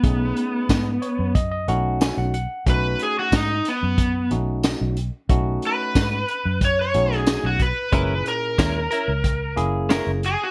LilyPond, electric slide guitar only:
\new Staff \with { instrumentName = "Electric slide guitar" } { \time 4/4 \key b \mixolydian \tempo 4 = 91 b2 r2 | b'8 gis'16 fis'16 dis'8 b4 r4. | r8 b'4. cis''16 cis''8 gis'8 fis'16 b'8~ | b'8 ais'2 r4 gis'16 fis'16 | }